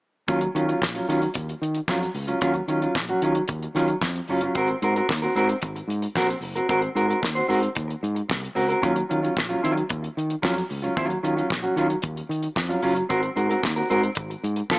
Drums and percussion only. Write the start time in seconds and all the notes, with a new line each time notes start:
0.28 kick, closed hi-hat
0.41 closed hi-hat
0.56 closed hi-hat
0.69 closed hi-hat
0.82 kick, snare
0.95 closed hi-hat
1.10 closed hi-hat
1.22 closed hi-hat
1.34 kick, closed hi-hat
1.49 closed hi-hat
1.63 closed hi-hat
1.75 closed hi-hat
1.88 kick, snare
2.03 closed hi-hat
2.14 open hi-hat
2.28 closed hi-hat
2.41 kick, closed hi-hat
2.54 closed hi-hat
2.68 closed hi-hat
2.82 closed hi-hat
2.95 kick, snare
3.08 closed hi-hat
3.22 closed hi-hat
3.35 closed hi-hat
3.48 kick, closed hi-hat
3.63 closed hi-hat
3.76 snare, closed hi-hat
3.88 closed hi-hat
4.02 kick, snare
4.16 closed hi-hat
4.28 open hi-hat
4.41 closed hi-hat
4.55 kick, closed hi-hat
4.68 closed hi-hat
4.82 closed hi-hat
4.96 closed hi-hat
5.09 kick, snare
5.22 closed hi-hat
5.36 closed hi-hat
5.49 closed hi-hat
5.62 kick, closed hi-hat
5.76 closed hi-hat
5.90 closed hi-hat
6.02 closed hi-hat
6.16 kick, snare
6.30 closed hi-hat
6.42 open hi-hat
6.56 closed hi-hat
6.69 kick, closed hi-hat
6.82 closed hi-hat
6.97 closed hi-hat
7.11 closed hi-hat
7.23 kick, snare
7.36 closed hi-hat
7.50 open hi-hat
7.63 closed hi-hat
7.75 kick, closed hi-hat
7.90 closed hi-hat
8.04 closed hi-hat
8.16 closed hi-hat
8.30 kick, snare
8.45 closed hi-hat
8.56 open hi-hat
8.70 closed hi-hat
8.83 kick, closed hi-hat
8.96 closed hi-hat
9.11 closed hi-hat
9.24 closed hi-hat
9.37 kick, snare
9.50 closed hi-hat
9.65 closed hi-hat
9.77 closed hi-hat
9.89 kick, closed hi-hat
10.04 closed hi-hat
10.18 closed hi-hat
10.30 closed hi-hat
10.43 kick, snare
10.58 closed hi-hat
10.70 open hi-hat
10.84 closed hi-hat
10.97 kick, closed hi-hat
11.10 closed hi-hat
11.25 closed hi-hat
11.38 closed hi-hat
11.50 kick, snare
11.64 closed hi-hat
11.77 closed hi-hat
11.90 closed hi-hat
12.02 kick, closed hi-hat
12.17 closed hi-hat
12.31 closed hi-hat
12.43 closed hi-hat
12.56 kick, snare
12.70 closed hi-hat
12.82 open hi-hat
12.96 closed hi-hat
13.10 kick, closed hi-hat
13.23 closed hi-hat
13.37 closed hi-hat
13.51 closed hi-hat
13.63 kick, snare
13.76 closed hi-hat
13.91 closed hi-hat
14.03 closed hi-hat
14.15 kick, closed hi-hat
14.31 closed hi-hat
14.44 closed hi-hat
14.56 closed hi-hat
14.70 kick, snare